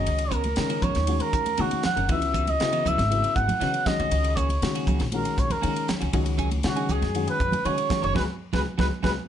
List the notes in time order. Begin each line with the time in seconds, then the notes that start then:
Already playing: D#3 G#3 C#4 F#4 D#5
0.07 C#2, ride
0.18 muted clean electric guitar stroke, ride
0.31 B3 C#4 F#4 A#4, kick, hi-hat pedal
0.44 muted clean electric guitar stroke, ride, high conga
0.56 C#3 D#3 G#3 C#4 D#4, snare, ride
0.70 B3 C#4 F#4 A#4, ride
0.82 C#2 B3 C#4 F#4 A#4 C#5, kick, hi-hat pedal, low conga
0.95 D#2, snare, ride, high conga
1.07 D#3 G#3 C#4 F#4, muted clean electric guitar stroke, ride, high conga
1.20 A#4, muted clean electric guitar stroke, ride
1.33 D#2, muted clean electric guitar stroke, kick, hi-hat pedal
1.46 muted clean electric guitar stroke, ride, high conga
1.57 C#3 D#3 G#3 B3 C#4 D#4 F#4 A#4, ride, high conga
1.70 muted clean electric guitar stroke, ride, high conga
1.83 F#5, muted clean electric guitar stroke, muted upright bass stroke, snare, hi-hat pedal, low conga
1.96 F#1 C#4 F#4 A#4, ride, low conga
2.08 C#2 C#3 E3 F#3 B3 D#4 E4 F#4 E5, kick, ride
2.21 muted clean electric guitar stroke, ride
2.33 E3 B3 D#4 F#4, kick, hi-hat pedal
2.47 D#5, muted clean electric guitar stroke, ride, high conga
2.60 C#3 F#3 B3 E4, snare, ride
2.73 E3 B3 D#4 F#4, ride
2.84 C#2 E3 B3 D#4 F#4 E5, hi-hat pedal, low conga
2.98 G#1, snare, ride, high conga
3.10 C#3 F#3 B3 E4, muted clean electric guitar stroke, ride, high conga
3.22 muted clean electric guitar stroke, ride
3.35 G#1 F#5, muted clean electric guitar stroke, kick, hi-hat pedal
3.48 muted clean electric guitar stroke, ride, high conga, low conga
3.60 C#3 E3 F#3 B3 C#4 D#4 F#4, snare, ride
3.74 muted clean electric guitar stroke, ride
3.86 D#3 G#3 C#4 F#4 D#5, muted clean electric guitar stroke, muted upright bass stroke, kick, snare, hi-hat pedal, low conga
3.99 C#2 C#4 F#4, ride
4.11 C#2, ride
4.24 muted clean electric guitar stroke, ride
4.36 A#3 C#4 F#4 C#5, kick, hi-hat pedal
4.49 muted clean electric guitar stroke, ride, high conga
4.62 C#3 D#3 G#3 C#4 F#4, snare, ride
4.75 A#3 C#4 F#4, ride
4.87 C#2 A#3 C#4 F#4, kick, hi-hat pedal, low conga
4.99 A#1, snare, ride, high conga
5.12 D#3 G#3 C#4 F#4 A#4, muted clean electric guitar stroke, ride, high conga
5.25 muted clean electric guitar stroke, ride
5.37 A#1 C#5, muted clean electric guitar stroke, kick, hi-hat pedal
5.50 A#4, muted clean electric guitar stroke, ride, high conga, low conga
5.62 C#3 D#3 G#3 A#3 C#4 D#4 F#4, ride
5.76 muted clean electric guitar stroke, ride
5.88 muted clean electric guitar stroke, muted upright bass stroke, snare, hi-hat pedal, low conga
6.01 C#2 C#4 F#4, ride
6.13 C#2 D#3 F#3 G#3 C#4 D#4 F#4 G#4, kick, ride
6.25 muted clean electric guitar stroke, ride
6.37 F#3 C#4 D#4 G#4, kick, hi-hat pedal
6.51 muted clean electric guitar stroke, ride, high conga
6.63 C#3 D#3 G#3 C#4 F#4, snare, ride
6.76 F#3 C#4 D#4 G#4, ride
6.89 C#2 F#3 C#4 D#4 G#4, hi-hat pedal, low conga
7.02 F#2, snare, ride, high conga
7.14 D#3 G#3 C#4 F#4, muted clean electric guitar stroke, ride, high conga
7.27 B4, muted clean electric guitar stroke, ride
7.40 F#2, muted clean electric guitar stroke, kick, hi-hat pedal
7.52 muted clean electric guitar stroke, ride, high conga, low conga
7.65 C#3 D#3 F#3 G#3 C#4 D#4 F#4 G#4 C#5, ride
7.78 muted clean electric guitar stroke, ride
7.90 D#3 G#3 C#4 F#4, muted upright bass stroke, muted clean electric guitar stroke, kick, snare, hi-hat pedal, low conga
8.02 F#1 C#4 F#4 A#4 C#5, ride
8.14 C#2 F#3 G#3 B3 D#4 F#4 G#4 B4, kick, snare, low conga
8.53 C#2 F#3 G#3 B3 D#4 F#4 G#4 B4, kick, snare, low conga
8.78 C#2 F#3 G#3 B3 D#4 F#4 G#4 B4, kick, snare, low conga
9.02 C#2 F#3 G#3 B3 D#4 F#4 G#4 B4, kick, snare, low conga